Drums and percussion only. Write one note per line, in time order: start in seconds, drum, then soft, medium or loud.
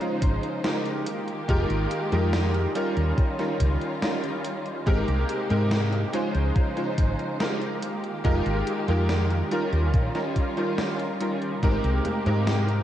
0.01 closed hi-hat soft
0.22 kick loud
0.22 closed hi-hat medium
0.43 closed hi-hat soft
0.64 snare loud
0.64 closed hi-hat medium
0.85 closed hi-hat soft
1.06 closed hi-hat medium
1.28 closed hi-hat soft
1.49 kick loud
1.49 closed hi-hat medium
1.70 closed hi-hat soft
1.91 closed hi-hat medium
2.12 closed hi-hat soft
2.33 snare loud
2.33 closed hi-hat medium
2.54 closed hi-hat soft
2.75 closed hi-hat medium
2.97 closed hi-hat soft
3.18 kick loud
3.18 closed hi-hat medium
3.39 snare soft
3.39 closed hi-hat soft
3.60 kick medium
3.60 closed hi-hat medium
3.81 closed hi-hat soft
4.02 snare loud
4.02 closed hi-hat medium
4.24 closed hi-hat soft
4.45 closed hi-hat medium
4.66 closed hi-hat soft
4.87 kick loud
4.87 closed hi-hat medium
5.08 closed hi-hat soft
5.29 closed hi-hat medium
5.50 closed hi-hat soft
5.71 snare loud
5.71 closed hi-hat medium
5.93 closed hi-hat soft
6.13 snare soft
6.13 closed hi-hat medium
6.35 closed hi-hat soft
6.56 kick loud
6.56 closed hi-hat medium
6.77 closed hi-hat soft
6.98 kick loud
6.98 closed hi-hat medium
7.19 closed hi-hat soft
7.40 snare loud
7.40 closed hi-hat medium
7.62 closed hi-hat soft
7.82 closed hi-hat medium
8.04 closed hi-hat soft
8.25 kick loud
8.25 closed hi-hat medium
8.46 closed hi-hat soft
8.67 closed hi-hat medium
8.88 closed hi-hat soft
9.09 snare loud
9.09 closed hi-hat medium
9.31 closed hi-hat soft
9.51 closed hi-hat medium
9.73 closed hi-hat soft
9.94 kick loud
9.94 closed hi-hat medium
10.15 snare soft
10.15 closed hi-hat soft
10.36 kick medium
10.36 closed hi-hat medium
10.57 closed hi-hat soft
10.78 snare loud
10.78 closed hi-hat medium
10.99 closed hi-hat soft
11.20 closed hi-hat medium
11.42 closed hi-hat soft
11.63 kick loud
11.63 closed hi-hat medium
11.63 high conga soft
11.84 closed hi-hat soft
12.05 closed hi-hat medium
12.05 high conga medium
12.26 closed hi-hat soft
12.26 high conga soft
12.47 snare loud
12.47 closed hi-hat medium
12.47 high conga soft
12.69 closed hi-hat soft